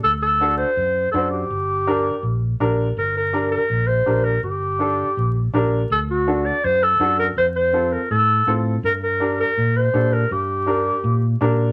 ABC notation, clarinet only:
X:1
M:4/4
L:1/8
Q:1/4=164
K:Dm
V:1 name="Clarinet"
A A2 c3 A G- | G6 z2 | B B2 B2 c2 B | G6 z2 |
A ^F2 d c A2 B | c c2 B A3 z | B B2 B2 c2 B | G6 z2 |]